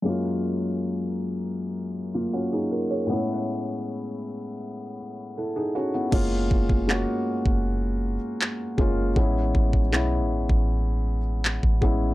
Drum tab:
CC |----------------|----------------|x---------------|----------------|
CP |----------------|----------------|----x-------x---|----x-------x---|
BD |----------------|----------------|o-oo---o------o-|o-oo---o-----oo-|